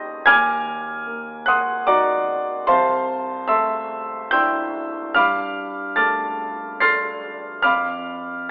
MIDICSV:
0, 0, Header, 1, 2, 480
1, 0, Start_track
1, 0, Tempo, 808625
1, 152, Time_signature, 3, 2, 24, 8
1, 2071, Tempo, 828729
1, 3991, Tempo, 852273
1, 4951, End_track
2, 0, Start_track
2, 0, Title_t, "Grand piano"
2, 0, Program_c, 0, 0
2, 0, Control_c, 0, 64, 127
2, 0, Note_on_c, 0, 39, 54
2, 0, Note_on_c, 0, 58, 41
2, 0, Note_on_c, 0, 63, 41
2, 0, Note_on_c, 0, 67, 41
2, 0, Note_on_c, 0, 79, 70
2, 0, Note_on_c, 0, 82, 69
2, 0, Note_on_c, 0, 84, 62
2, 0, Note_on_c, 0, 87, 78
2, 0, Note_on_c, 0, 91, 75
2, 0, Note_on_c, 0, 94, 88
2, 131, Note_off_c, 0, 39, 0
2, 131, Note_off_c, 0, 87, 0
2, 133, Note_off_c, 0, 67, 0
2, 133, Note_off_c, 0, 82, 0
2, 133, Note_off_c, 0, 91, 0
2, 134, Note_off_c, 0, 63, 0
2, 152, Note_on_c, 0, 92, 101
2, 153, Note_off_c, 0, 94, 0
2, 158, Note_on_c, 0, 86, 78
2, 158, Note_on_c, 0, 89, 85
2, 160, Note_on_c, 0, 80, 83
2, 162, Control_c, 0, 64, 0
2, 162, Note_on_c, 0, 39, 55
2, 165, Note_off_c, 0, 58, 0
2, 166, Note_off_c, 0, 79, 0
2, 167, Note_off_c, 0, 84, 0
2, 265, Control_c, 0, 64, 127
2, 635, Note_on_c, 0, 58, 39
2, 851, Note_off_c, 0, 89, 0
2, 852, Note_off_c, 0, 86, 0
2, 853, Note_off_c, 0, 80, 0
2, 866, Note_on_c, 0, 90, 83
2, 872, Note_off_c, 0, 92, 0
2, 877, Note_on_c, 0, 78, 64
2, 877, Note_on_c, 0, 84, 66
2, 880, Note_on_c, 0, 87, 63
2, 1100, Note_off_c, 0, 78, 0
2, 1100, Note_off_c, 0, 84, 0
2, 1102, Note_off_c, 0, 87, 0
2, 1108, Note_on_c, 0, 86, 89
2, 1111, Note_off_c, 0, 90, 0
2, 1112, Note_on_c, 0, 74, 68
2, 1112, Note_on_c, 0, 78, 69
2, 1115, Note_on_c, 0, 63, 39
2, 1115, Note_on_c, 0, 66, 44
2, 1115, Note_on_c, 0, 82, 61
2, 1402, Note_off_c, 0, 58, 0
2, 1564, Note_off_c, 0, 74, 0
2, 1564, Note_off_c, 0, 78, 0
2, 1566, Note_off_c, 0, 63, 0
2, 1566, Note_off_c, 0, 66, 0
2, 1566, Note_off_c, 0, 82, 0
2, 1571, Note_off_c, 0, 39, 0
2, 1586, Note_off_c, 0, 86, 0
2, 1586, Note_on_c, 0, 84, 95
2, 1587, Note_on_c, 0, 36, 59
2, 1588, Note_on_c, 0, 77, 69
2, 1589, Note_on_c, 0, 81, 72
2, 1592, Note_on_c, 0, 72, 76
2, 1598, Control_c, 0, 64, 0
2, 1674, Control_c, 0, 64, 127
2, 2046, Note_off_c, 0, 77, 0
2, 2047, Note_off_c, 0, 81, 0
2, 2048, Note_off_c, 0, 72, 0
2, 2060, Note_off_c, 0, 84, 0
2, 2063, Note_on_c, 0, 88, 87
2, 2067, Note_on_c, 0, 76, 64
2, 2068, Note_on_c, 0, 81, 61
2, 2069, Note_on_c, 0, 84, 66
2, 2073, Note_on_c, 0, 57, 43
2, 2526, Note_off_c, 0, 76, 0
2, 2526, Note_off_c, 0, 81, 0
2, 2527, Note_off_c, 0, 84, 0
2, 2543, Note_off_c, 0, 88, 0
2, 2546, Note_on_c, 0, 91, 90
2, 2552, Note_on_c, 0, 88, 68
2, 2554, Note_on_c, 0, 62, 42
2, 2554, Note_on_c, 0, 79, 66
2, 2556, Note_on_c, 0, 64, 42
2, 2556, Note_on_c, 0, 84, 68
2, 2841, Note_off_c, 0, 57, 0
2, 3009, Note_off_c, 0, 36, 0
2, 3010, Note_off_c, 0, 88, 0
2, 3011, Note_off_c, 0, 62, 0
2, 3011, Note_off_c, 0, 79, 0
2, 3012, Note_off_c, 0, 64, 0
2, 3012, Note_off_c, 0, 84, 0
2, 3030, Note_on_c, 0, 89, 88
2, 3031, Note_off_c, 0, 91, 0
2, 3035, Note_on_c, 0, 77, 73
2, 3036, Note_on_c, 0, 43, 53
2, 3037, Note_on_c, 0, 86, 72
2, 3038, Note_on_c, 0, 83, 74
2, 3044, Control_c, 0, 64, 0
2, 3136, Control_c, 0, 64, 127
2, 3489, Note_off_c, 0, 77, 0
2, 3490, Note_off_c, 0, 83, 0
2, 3490, Note_off_c, 0, 86, 0
2, 3497, Note_off_c, 0, 89, 0
2, 3502, Note_on_c, 0, 93, 83
2, 3505, Note_on_c, 0, 89, 60
2, 3508, Note_on_c, 0, 81, 63
2, 3508, Note_on_c, 0, 86, 64
2, 3509, Note_on_c, 0, 57, 38
2, 3965, Note_off_c, 0, 89, 0
2, 3966, Note_off_c, 0, 81, 0
2, 3966, Note_off_c, 0, 86, 0
2, 3984, Note_off_c, 0, 93, 0
2, 3991, Note_on_c, 0, 96, 88
2, 3992, Note_on_c, 0, 93, 68
2, 3994, Note_on_c, 0, 62, 35
2, 3995, Note_on_c, 0, 84, 68
2, 3997, Note_on_c, 0, 69, 40
2, 3998, Note_on_c, 0, 89, 70
2, 4273, Note_off_c, 0, 57, 0
2, 4443, Note_off_c, 0, 43, 0
2, 4443, Note_off_c, 0, 93, 0
2, 4444, Note_off_c, 0, 62, 0
2, 4444, Note_off_c, 0, 84, 0
2, 4445, Note_off_c, 0, 69, 0
2, 4445, Note_off_c, 0, 89, 0
2, 4453, Note_on_c, 0, 89, 91
2, 4459, Note_on_c, 0, 83, 67
2, 4460, Note_on_c, 0, 86, 69
2, 4462, Note_on_c, 0, 41, 52
2, 4464, Note_on_c, 0, 77, 66
2, 4465, Note_off_c, 0, 96, 0
2, 4475, Control_c, 0, 64, 0
2, 4562, Control_c, 0, 64, 127
2, 4925, Note_off_c, 0, 83, 0
2, 4925, Note_off_c, 0, 86, 0
2, 4928, Note_off_c, 0, 77, 0
2, 4941, Note_off_c, 0, 89, 0
2, 4951, Note_off_c, 0, 41, 0
2, 4951, End_track
0, 0, End_of_file